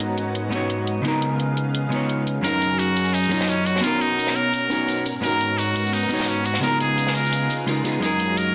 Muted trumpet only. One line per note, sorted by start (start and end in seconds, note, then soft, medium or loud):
2.44 2.81 A#4 loud
2.79 3.16 F#4 loud
3.14 3.50 D#4 loud
3.49 3.68 C#4 medium
3.66 3.85 F#4 medium
3.83 4.03 F4 loud
4.01 4.37 D#4 loud
4.36 5.06 A#4 loud
5.23 5.60 A#4 loud
5.58 5.95 F#4 medium
5.93 6.29 D#4 medium
6.28 6.47 C#4 medium
6.46 6.62 F#4 medium
6.63 6.79 A#4 loud
6.80 7.13 G#4 loud
7.15 7.55 A#4 medium
8.03 8.39 G#4 loud
8.38 8.55 A#4 loud